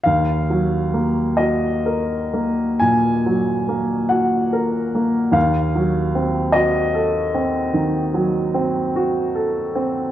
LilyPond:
<<
  \new Staff \with { instrumentName = "Grand piano" } { \time 12/8 \key ees \minor \tempo 4. = 49 f''4. ees''4. aes''4. ges''4. | f''4. ees''1~ ees''8 | }
  \new Staff \with { instrumentName = "Grand piano" } { \time 12/8 \key ees \minor ees,8 ges8 bes8 ges'8 bes'8 bes8 bes,8 ges8 bes8 ges'8 bes'8 bes8 | ees,8 ges8 c'8 ges'8 a'8 c'8 ees8 ges8 c'8 ges'8 a'8 c'8 | }
>>